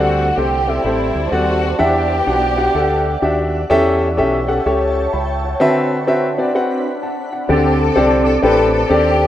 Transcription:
Already playing: D2 D3 G3 A3 C4 F#4 A4 C5 D5 A5
0.37 C2 C4 G4 A4 C5
0.67 C4 E4 G4 A4 D5
0.83 A1 G3 C4 E4 G4 A4 C5
1.15 D2
1.30 D#2 G3 A3 C4 F#4 A4 D5
1.78 E2 E3 B3 D4 G4 E5 F#5
2.27 B1 D4 F#4 G4 F#5
2.57 D4 F#4 G4 F#5
2.75 D2 D4 G4 A4 F#5
3.22 D#2 D4 F#4 G4 E5
3.70 E2 E3 C#4 G4 A4 C#5 E5 G5 A5
4.17 B1 C#4 G4 A4 E5
4.48 C#4 G4 A4 F#5
4.66 C#2 C#4 G4 A4 C#5
5.13 C#2 G5 B5
5.44 F#5 A5
5.60 D3 C4 D4 F#4 B4 E5 F#5 B5
6.07 C4 F#4 B4 E5
6.38 C4 F#4 B4 D5
6.55 C4 F#4 B4 F#5
7.03 F#5 A5
7.33 D5 F#5
7.49 D2 D3 C4 D4 G4 A4 D5 A5 D6
7.78 C4 A4
7.96 C2 C4 D4 G4 A4 D5
8.25 A4
8.42 A1 C4 D4 G4 A4 B4
8.72 A4
8.89 D#2 C4 D4 G4 A4 D5

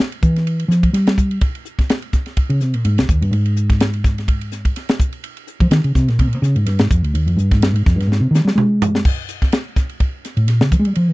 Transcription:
0.00 snare
0.12 ride
0.23 E3, kick, hi-hat pedal
0.36 snare, ride
0.47 ride
0.60 ride
0.68 F3, snare, hi-hat pedal
0.83 kick, ride
0.93 G3, snare, ride
1.07 snare, ride
1.18 kick, hi-hat pedal
1.31 ride
1.41 kick, ride
1.55 ride
1.65 hi-hat pedal
1.79 kick, snare, ride
1.89 snare, ride
2.02 ride
2.13 kick, snare, hi-hat pedal
2.26 snare, ride
2.37 kick, ride
2.50 C#3, ride
2.61 C3, snare, hi-hat pedal
2.74 A#2, ride
2.85 G#2, ride
2.98 C2, snare, ride
3.09 D#2, kick, hi-hat pedal
3.21 G2, ride
3.31 G#2, ride
3.46 ride
3.56 hi-hat pedal
3.70 kick, snare, ride
3.80 snare, ride
3.93 ride
4.04 kick, snare, hi-hat pedal
4.18 snare, ride
4.28 kick, ride
4.41 ride
4.52 snare, hi-hat pedal
4.65 kick, ride
4.76 snare, ride
4.89 snare, ride
5.00 kick, hi-hat pedal
5.13 ride
5.24 ride
5.37 ride
5.47 hi-hat pedal
5.60 F3, kick, ride
5.71 D#3, snare, ride
5.84 C#3, ride
5.95 C3, kick, snare, hi-hat pedal
6.08 A#2, snare, ride
6.19 C3, kick, ride
6.27 A#2
6.33 C3, ride
6.42 C#3, snare, hi-hat pedal
6.56 G#2, ride
6.66 G2, snare, ride
6.79 G#2, snare, ride
6.91 F2, kick, hi-hat pedal
7.02 D2, ride
7.14 D#2, ride
7.26 F2, ride
7.36 G2, hi-hat pedal
7.51 G#2, kick, snare, ride
7.61 G2, snare, ride
7.73 G#2, ride
7.86 F2, kick, snare, hi-hat pedal
7.96 G2
8.00 snare, ride
8.07 G#2
8.12 snare
8.20 C3
8.31 D#3, hi-hat pedal
8.35 snare
8.45 G3, snare
8.55 G#3, mid tom
8.82 floor tom, hi-hat pedal
8.95 snare
9.05 kick, crash
9.29 hi-hat pedal, ride
9.42 kick, snare, ride
9.52 snare, ride
9.76 kick, snare, hi-hat pedal, ride
9.89 ride
10.00 kick, ride
10.25 snare, hi-hat pedal, ride
10.37 A2, ride
10.48 A#2, snare, ride
10.61 C#3, snare
10.72 F3, kick, hi-hat pedal, ride
10.79 G#3
10.85 G3, ride
10.95 F3, ride
11.09 E3

